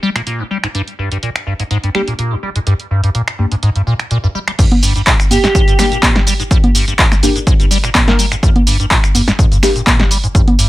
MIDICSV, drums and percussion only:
0, 0, Header, 1, 2, 480
1, 0, Start_track
1, 0, Tempo, 480000
1, 747, Time_signature, 4, 2, 24, 8
1, 10689, End_track
2, 0, Start_track
2, 0, Title_t, "Drums"
2, 156, Note_on_c, 9, 26, 64
2, 156, Note_on_c, 9, 42, 48
2, 256, Note_off_c, 9, 26, 0
2, 256, Note_off_c, 9, 42, 0
2, 267, Note_on_c, 9, 42, 62
2, 367, Note_off_c, 9, 42, 0
2, 636, Note_on_c, 9, 26, 70
2, 636, Note_on_c, 9, 42, 50
2, 736, Note_off_c, 9, 26, 0
2, 736, Note_off_c, 9, 42, 0
2, 747, Note_on_c, 9, 42, 55
2, 847, Note_off_c, 9, 42, 0
2, 876, Note_on_c, 9, 42, 31
2, 976, Note_off_c, 9, 42, 0
2, 1116, Note_on_c, 9, 42, 45
2, 1216, Note_off_c, 9, 42, 0
2, 1227, Note_on_c, 9, 42, 59
2, 1327, Note_off_c, 9, 42, 0
2, 1356, Note_on_c, 9, 26, 77
2, 1356, Note_on_c, 9, 42, 33
2, 1456, Note_off_c, 9, 26, 0
2, 1456, Note_off_c, 9, 42, 0
2, 1596, Note_on_c, 9, 42, 48
2, 1696, Note_off_c, 9, 42, 0
2, 1707, Note_on_c, 9, 42, 54
2, 1807, Note_off_c, 9, 42, 0
2, 1836, Note_on_c, 9, 42, 35
2, 1936, Note_off_c, 9, 42, 0
2, 1947, Note_on_c, 9, 26, 75
2, 2047, Note_off_c, 9, 26, 0
2, 2076, Note_on_c, 9, 42, 47
2, 2176, Note_off_c, 9, 42, 0
2, 2187, Note_on_c, 9, 42, 63
2, 2287, Note_off_c, 9, 42, 0
2, 2556, Note_on_c, 9, 42, 49
2, 2656, Note_off_c, 9, 42, 0
2, 2667, Note_on_c, 9, 42, 57
2, 2767, Note_off_c, 9, 42, 0
2, 2796, Note_on_c, 9, 42, 31
2, 2896, Note_off_c, 9, 42, 0
2, 3036, Note_on_c, 9, 42, 45
2, 3136, Note_off_c, 9, 42, 0
2, 3148, Note_on_c, 9, 42, 60
2, 3248, Note_off_c, 9, 42, 0
2, 3276, Note_on_c, 9, 26, 78
2, 3276, Note_on_c, 9, 42, 33
2, 3376, Note_off_c, 9, 26, 0
2, 3376, Note_off_c, 9, 42, 0
2, 3516, Note_on_c, 9, 42, 47
2, 3616, Note_off_c, 9, 42, 0
2, 3627, Note_on_c, 9, 42, 59
2, 3727, Note_off_c, 9, 42, 0
2, 3756, Note_on_c, 9, 42, 35
2, 3856, Note_off_c, 9, 42, 0
2, 3995, Note_on_c, 9, 26, 64
2, 3995, Note_on_c, 9, 42, 45
2, 4095, Note_off_c, 9, 26, 0
2, 4095, Note_off_c, 9, 42, 0
2, 4108, Note_on_c, 9, 42, 59
2, 4208, Note_off_c, 9, 42, 0
2, 4476, Note_on_c, 9, 26, 81
2, 4476, Note_on_c, 9, 42, 46
2, 4576, Note_off_c, 9, 26, 0
2, 4576, Note_off_c, 9, 42, 0
2, 4587, Note_on_c, 9, 42, 65
2, 4587, Note_on_c, 9, 49, 94
2, 4588, Note_on_c, 9, 36, 117
2, 4593, Note_on_c, 9, 82, 42
2, 4687, Note_off_c, 9, 42, 0
2, 4687, Note_off_c, 9, 49, 0
2, 4688, Note_off_c, 9, 36, 0
2, 4693, Note_off_c, 9, 82, 0
2, 4716, Note_on_c, 9, 42, 35
2, 4716, Note_on_c, 9, 63, 64
2, 4816, Note_off_c, 9, 42, 0
2, 4816, Note_off_c, 9, 63, 0
2, 4827, Note_on_c, 9, 46, 109
2, 4833, Note_on_c, 9, 82, 81
2, 4927, Note_off_c, 9, 46, 0
2, 4933, Note_off_c, 9, 82, 0
2, 4956, Note_on_c, 9, 42, 55
2, 4962, Note_on_c, 9, 82, 34
2, 5056, Note_off_c, 9, 42, 0
2, 5062, Note_off_c, 9, 82, 0
2, 5068, Note_on_c, 9, 36, 102
2, 5068, Note_on_c, 9, 42, 66
2, 5070, Note_on_c, 9, 39, 115
2, 5074, Note_on_c, 9, 82, 43
2, 5168, Note_off_c, 9, 36, 0
2, 5168, Note_off_c, 9, 42, 0
2, 5170, Note_off_c, 9, 39, 0
2, 5174, Note_off_c, 9, 82, 0
2, 5197, Note_on_c, 9, 26, 74
2, 5203, Note_on_c, 9, 82, 30
2, 5297, Note_off_c, 9, 26, 0
2, 5303, Note_off_c, 9, 82, 0
2, 5308, Note_on_c, 9, 46, 100
2, 5308, Note_on_c, 9, 63, 43
2, 5315, Note_on_c, 9, 82, 86
2, 5408, Note_off_c, 9, 46, 0
2, 5408, Note_off_c, 9, 63, 0
2, 5415, Note_off_c, 9, 82, 0
2, 5437, Note_on_c, 9, 38, 64
2, 5437, Note_on_c, 9, 42, 58
2, 5444, Note_on_c, 9, 82, 33
2, 5537, Note_off_c, 9, 38, 0
2, 5537, Note_off_c, 9, 42, 0
2, 5544, Note_off_c, 9, 82, 0
2, 5548, Note_on_c, 9, 36, 124
2, 5549, Note_on_c, 9, 42, 66
2, 5555, Note_on_c, 9, 82, 41
2, 5648, Note_off_c, 9, 36, 0
2, 5649, Note_off_c, 9, 42, 0
2, 5655, Note_off_c, 9, 82, 0
2, 5677, Note_on_c, 9, 42, 40
2, 5683, Note_on_c, 9, 82, 32
2, 5777, Note_off_c, 9, 42, 0
2, 5783, Note_off_c, 9, 82, 0
2, 5788, Note_on_c, 9, 26, 74
2, 5788, Note_on_c, 9, 38, 37
2, 5788, Note_on_c, 9, 46, 106
2, 5794, Note_on_c, 9, 82, 74
2, 5888, Note_off_c, 9, 26, 0
2, 5888, Note_off_c, 9, 38, 0
2, 5888, Note_off_c, 9, 46, 0
2, 5894, Note_off_c, 9, 82, 0
2, 5917, Note_on_c, 9, 42, 54
2, 5923, Note_on_c, 9, 82, 32
2, 6017, Note_off_c, 9, 42, 0
2, 6023, Note_off_c, 9, 82, 0
2, 6028, Note_on_c, 9, 42, 72
2, 6028, Note_on_c, 9, 63, 66
2, 6029, Note_on_c, 9, 36, 99
2, 6030, Note_on_c, 9, 39, 127
2, 6034, Note_on_c, 9, 82, 45
2, 6128, Note_off_c, 9, 42, 0
2, 6128, Note_off_c, 9, 63, 0
2, 6129, Note_off_c, 9, 36, 0
2, 6130, Note_off_c, 9, 39, 0
2, 6134, Note_off_c, 9, 82, 0
2, 6156, Note_on_c, 9, 38, 68
2, 6156, Note_on_c, 9, 42, 41
2, 6256, Note_off_c, 9, 38, 0
2, 6256, Note_off_c, 9, 42, 0
2, 6268, Note_on_c, 9, 46, 95
2, 6274, Note_on_c, 9, 82, 83
2, 6368, Note_off_c, 9, 46, 0
2, 6374, Note_off_c, 9, 82, 0
2, 6397, Note_on_c, 9, 42, 53
2, 6403, Note_on_c, 9, 82, 33
2, 6497, Note_off_c, 9, 42, 0
2, 6503, Note_off_c, 9, 82, 0
2, 6508, Note_on_c, 9, 42, 64
2, 6509, Note_on_c, 9, 36, 123
2, 6514, Note_on_c, 9, 82, 44
2, 6608, Note_off_c, 9, 42, 0
2, 6609, Note_off_c, 9, 36, 0
2, 6614, Note_off_c, 9, 82, 0
2, 6637, Note_on_c, 9, 42, 36
2, 6637, Note_on_c, 9, 63, 62
2, 6737, Note_off_c, 9, 42, 0
2, 6737, Note_off_c, 9, 63, 0
2, 6748, Note_on_c, 9, 46, 115
2, 6755, Note_on_c, 9, 82, 83
2, 6848, Note_off_c, 9, 46, 0
2, 6855, Note_off_c, 9, 82, 0
2, 6877, Note_on_c, 9, 42, 53
2, 6883, Note_on_c, 9, 82, 34
2, 6977, Note_off_c, 9, 42, 0
2, 6983, Note_off_c, 9, 82, 0
2, 6988, Note_on_c, 9, 42, 63
2, 6989, Note_on_c, 9, 36, 111
2, 6990, Note_on_c, 9, 39, 127
2, 6995, Note_on_c, 9, 82, 40
2, 7088, Note_off_c, 9, 42, 0
2, 7089, Note_off_c, 9, 36, 0
2, 7090, Note_off_c, 9, 39, 0
2, 7095, Note_off_c, 9, 82, 0
2, 7117, Note_on_c, 9, 26, 79
2, 7117, Note_on_c, 9, 38, 36
2, 7123, Note_on_c, 9, 82, 31
2, 7217, Note_off_c, 9, 26, 0
2, 7217, Note_off_c, 9, 38, 0
2, 7223, Note_off_c, 9, 82, 0
2, 7228, Note_on_c, 9, 46, 101
2, 7235, Note_on_c, 9, 82, 82
2, 7328, Note_off_c, 9, 46, 0
2, 7335, Note_off_c, 9, 82, 0
2, 7356, Note_on_c, 9, 42, 57
2, 7362, Note_on_c, 9, 82, 34
2, 7456, Note_off_c, 9, 42, 0
2, 7462, Note_off_c, 9, 82, 0
2, 7468, Note_on_c, 9, 42, 63
2, 7469, Note_on_c, 9, 36, 126
2, 7474, Note_on_c, 9, 82, 43
2, 7568, Note_off_c, 9, 42, 0
2, 7569, Note_off_c, 9, 36, 0
2, 7574, Note_off_c, 9, 82, 0
2, 7597, Note_on_c, 9, 42, 39
2, 7603, Note_on_c, 9, 82, 32
2, 7697, Note_off_c, 9, 42, 0
2, 7703, Note_off_c, 9, 82, 0
2, 7709, Note_on_c, 9, 46, 107
2, 7715, Note_on_c, 9, 82, 77
2, 7809, Note_off_c, 9, 46, 0
2, 7815, Note_off_c, 9, 82, 0
2, 7837, Note_on_c, 9, 26, 64
2, 7837, Note_on_c, 9, 42, 53
2, 7843, Note_on_c, 9, 82, 33
2, 7937, Note_off_c, 9, 26, 0
2, 7937, Note_off_c, 9, 42, 0
2, 7943, Note_off_c, 9, 82, 0
2, 7948, Note_on_c, 9, 42, 67
2, 7948, Note_on_c, 9, 63, 62
2, 7949, Note_on_c, 9, 36, 108
2, 7950, Note_on_c, 9, 39, 126
2, 7955, Note_on_c, 9, 82, 43
2, 8048, Note_off_c, 9, 42, 0
2, 8048, Note_off_c, 9, 63, 0
2, 8049, Note_off_c, 9, 36, 0
2, 8051, Note_off_c, 9, 39, 0
2, 8055, Note_off_c, 9, 82, 0
2, 8077, Note_on_c, 9, 38, 67
2, 8077, Note_on_c, 9, 42, 42
2, 8177, Note_off_c, 9, 38, 0
2, 8177, Note_off_c, 9, 42, 0
2, 8189, Note_on_c, 9, 46, 104
2, 8195, Note_on_c, 9, 82, 79
2, 8289, Note_off_c, 9, 46, 0
2, 8295, Note_off_c, 9, 82, 0
2, 8317, Note_on_c, 9, 26, 77
2, 8317, Note_on_c, 9, 42, 55
2, 8323, Note_on_c, 9, 82, 34
2, 8417, Note_off_c, 9, 26, 0
2, 8417, Note_off_c, 9, 42, 0
2, 8423, Note_off_c, 9, 82, 0
2, 8428, Note_on_c, 9, 42, 58
2, 8429, Note_on_c, 9, 36, 122
2, 8435, Note_on_c, 9, 82, 39
2, 8528, Note_off_c, 9, 42, 0
2, 8529, Note_off_c, 9, 36, 0
2, 8535, Note_off_c, 9, 82, 0
2, 8557, Note_on_c, 9, 42, 35
2, 8557, Note_on_c, 9, 63, 60
2, 8657, Note_off_c, 9, 42, 0
2, 8657, Note_off_c, 9, 63, 0
2, 8669, Note_on_c, 9, 46, 115
2, 8675, Note_on_c, 9, 82, 76
2, 8769, Note_off_c, 9, 46, 0
2, 8775, Note_off_c, 9, 82, 0
2, 8797, Note_on_c, 9, 42, 49
2, 8804, Note_on_c, 9, 82, 31
2, 8897, Note_off_c, 9, 42, 0
2, 8904, Note_off_c, 9, 82, 0
2, 8908, Note_on_c, 9, 36, 111
2, 8910, Note_on_c, 9, 42, 60
2, 8912, Note_on_c, 9, 39, 119
2, 8916, Note_on_c, 9, 82, 43
2, 9008, Note_off_c, 9, 36, 0
2, 9010, Note_off_c, 9, 42, 0
2, 9012, Note_off_c, 9, 39, 0
2, 9016, Note_off_c, 9, 82, 0
2, 9037, Note_on_c, 9, 26, 80
2, 9043, Note_on_c, 9, 82, 29
2, 9137, Note_off_c, 9, 26, 0
2, 9143, Note_off_c, 9, 82, 0
2, 9148, Note_on_c, 9, 46, 109
2, 9148, Note_on_c, 9, 63, 43
2, 9154, Note_on_c, 9, 82, 77
2, 9248, Note_off_c, 9, 46, 0
2, 9248, Note_off_c, 9, 63, 0
2, 9254, Note_off_c, 9, 82, 0
2, 9277, Note_on_c, 9, 38, 67
2, 9277, Note_on_c, 9, 42, 52
2, 9283, Note_on_c, 9, 82, 32
2, 9377, Note_off_c, 9, 38, 0
2, 9377, Note_off_c, 9, 42, 0
2, 9383, Note_off_c, 9, 82, 0
2, 9388, Note_on_c, 9, 36, 126
2, 9388, Note_on_c, 9, 42, 64
2, 9394, Note_on_c, 9, 82, 42
2, 9488, Note_off_c, 9, 36, 0
2, 9488, Note_off_c, 9, 42, 0
2, 9494, Note_off_c, 9, 82, 0
2, 9517, Note_on_c, 9, 42, 38
2, 9523, Note_on_c, 9, 82, 31
2, 9617, Note_off_c, 9, 42, 0
2, 9623, Note_off_c, 9, 82, 0
2, 9628, Note_on_c, 9, 26, 85
2, 9628, Note_on_c, 9, 38, 38
2, 9628, Note_on_c, 9, 46, 107
2, 9634, Note_on_c, 9, 82, 74
2, 9728, Note_off_c, 9, 26, 0
2, 9728, Note_off_c, 9, 38, 0
2, 9728, Note_off_c, 9, 46, 0
2, 9734, Note_off_c, 9, 82, 0
2, 9757, Note_on_c, 9, 42, 52
2, 9763, Note_on_c, 9, 82, 32
2, 9857, Note_off_c, 9, 42, 0
2, 9863, Note_off_c, 9, 82, 0
2, 9868, Note_on_c, 9, 36, 110
2, 9868, Note_on_c, 9, 42, 61
2, 9868, Note_on_c, 9, 63, 60
2, 9870, Note_on_c, 9, 39, 118
2, 9874, Note_on_c, 9, 82, 43
2, 9968, Note_off_c, 9, 36, 0
2, 9968, Note_off_c, 9, 42, 0
2, 9968, Note_off_c, 9, 63, 0
2, 9970, Note_off_c, 9, 39, 0
2, 9974, Note_off_c, 9, 82, 0
2, 9996, Note_on_c, 9, 38, 67
2, 9996, Note_on_c, 9, 42, 37
2, 10096, Note_off_c, 9, 38, 0
2, 10096, Note_off_c, 9, 42, 0
2, 10108, Note_on_c, 9, 46, 104
2, 10114, Note_on_c, 9, 82, 75
2, 10208, Note_off_c, 9, 46, 0
2, 10214, Note_off_c, 9, 82, 0
2, 10236, Note_on_c, 9, 42, 53
2, 10242, Note_on_c, 9, 82, 32
2, 10336, Note_off_c, 9, 42, 0
2, 10342, Note_off_c, 9, 82, 0
2, 10348, Note_on_c, 9, 36, 118
2, 10348, Note_on_c, 9, 42, 57
2, 10355, Note_on_c, 9, 82, 44
2, 10448, Note_off_c, 9, 36, 0
2, 10448, Note_off_c, 9, 42, 0
2, 10455, Note_off_c, 9, 82, 0
2, 10476, Note_on_c, 9, 42, 34
2, 10476, Note_on_c, 9, 63, 58
2, 10576, Note_off_c, 9, 42, 0
2, 10576, Note_off_c, 9, 63, 0
2, 10588, Note_on_c, 9, 46, 121
2, 10594, Note_on_c, 9, 82, 77
2, 10688, Note_off_c, 9, 46, 0
2, 10689, Note_off_c, 9, 82, 0
2, 10689, End_track
0, 0, End_of_file